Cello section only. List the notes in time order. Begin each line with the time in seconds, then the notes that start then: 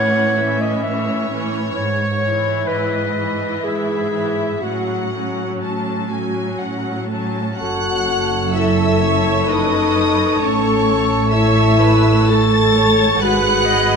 Already playing: A2
0.85 A2
1.76 G#2
2.69 G#2
3.64 G#2
4.62 A2
5.62 A2
6.61 A2
7.59 F#2
10.40 A2
13.21 G#2